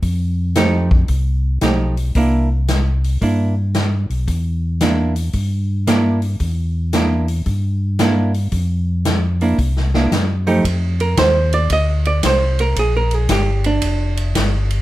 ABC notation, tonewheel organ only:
X:1
M:4/4
L:1/8
Q:"Swing" 1/4=113
K:F
V:1 name="Tonewheel organ" clef=bass
F,,4 C,,2 =B,,,2 | C,,4 G,,3 =B,,, | E,,4 G,,4 | E,,4 G,,4 |
F,,4 C,,2 _G,,2 | F,,2 _E,,2 D,,2 C,,2 | B,,,2 G,,,2 F,,,2 G,,,2 |]